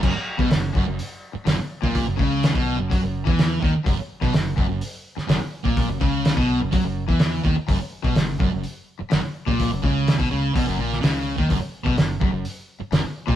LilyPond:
<<
  \new Staff \with { instrumentName = "Distorted electric guitar" } { \clef bass \time 4/4 \key fis \major \tempo 4 = 126 fis,16 r8 b,16 fis,8 fis,16 fis,16 r4 fis,16 r8 ais,16~ | ais,16 fis,16 cis8. b,8 fis,16 fis16 fis,8 e8. dis16 r16 | fis,16 r8 b,16 fis,8 fis,16 fis,16 r4 fis,16 r8 ais,16~ | ais,16 fis,16 cis8. b,8 fis,16 fis16 fis,8 e8. dis16 r16 |
fis,16 r8 b,16 fis,8 fis,16 fis,16 r4 fis,16 r8 ais,16~ | ais,16 fis,16 cis8. b,16 cis8 b,16 fis,16 ais,8 cis8. dis16 | fis,16 r8 b,16 fis,8 fis,16 fis,16 r4 fis,16 r8 ais,16 | }
  \new Staff \with { instrumentName = "Overdriven electric guitar" } { \clef bass \time 4/4 \key fis \major fis,16 r8 b,16 fis,8 fis,16 fis,16 r4 fis,16 r8 ais,16~ | ais,16 fis,16 cis8. b,8 fis,16 fis16 fis,8 e8. dis16 r16 | fis,16 r8 b,16 fis,8 fis,16 fis,16 r4 fis,16 r8 ais,16~ | ais,16 fis,16 cis8. b,8 fis,16 fis16 fis,8 e8. dis16 r16 |
fis,16 r8 b,16 fis,8 fis,16 fis,16 r4 fis,16 r8 ais,16~ | ais,16 fis,16 cis8. b,16 cis8 b,16 fis,16 ais,8 cis8. dis16 | fis,16 r8 b,16 fis,8 fis,16 fis,16 r4 fis,16 r8 ais,16 | }
  \new Staff \with { instrumentName = "Fingered electric bass" } { \clef bass \time 4/4 \key fis \major fis,,16 r8 b,,16 fis,,8 fis,,16 fis,,16 r4 fis,,16 r8 ais,,16~ | ais,,16 fis,,16 cis,8. b,,8 fis,,16 fis,16 fis,,8 e,8. dis,16 r16 | fis,,16 r8 b,,16 fis,,8 fis,,16 fis,,16 r4 fis,,16 r8 ais,,16~ | ais,,16 fis,,16 cis,8. b,,8 fis,,16 fis,16 fis,,8 e,8. dis,16 r16 |
fis,,16 r8 b,,16 fis,,8 fis,,16 fis,,16 r4 fis,,16 r8 ais,,16~ | ais,,16 fis,,16 cis,8. b,,16 cis,8 b,,16 fis,,16 ais,,8 cis,8. dis,16 | fis,,16 r8 b,,16 fis,,8 fis,,16 fis,,16 r4 fis,,16 r8 ais,,16 | }
  \new DrumStaff \with { instrumentName = "Drums" } \drummode { \time 4/4 <cymc bd>8. bd16 <hho sn>8 bd8 hho4 <hho sn>8. bd16 | <hho bd>8 bd8 <hho sn>16 bd8. <hho bd>8. bd16 <hho sn>8 bd8 | <hho bd>8. <bd sn>16 <hho sn>8 bd8 hho8. sn16 <hho sn>8. bd16 | <hho bd>8 bd8 <hho sn>16 bd8. <hho bd>8. bd16 <hho sn>8 bd8 |
<hho bd>8. bd16 <hho sn>8 bd8 hho4 <hho sn>8. bd16 | <hho bd>8 bd8 <hho sn>16 bd8. <hho bd>8. sn16 <hho sn>8. bd16 | <hho bd>8. bd16 <hho sn>8 bd8 hho4 <hho sn>8. bd16 | }
>>